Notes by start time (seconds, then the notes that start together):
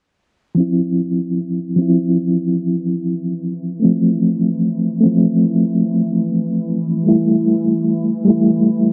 0.55 E3 F3 C4 E4
0.60 E4
1.76 F3 C4
1.81 E4
3.79 A3 C4
3.85 F3
5.01 A3 C4
5.05 F3
7.03 G3 A3
7.08 E4
8.25 G3 A3
8.30 E4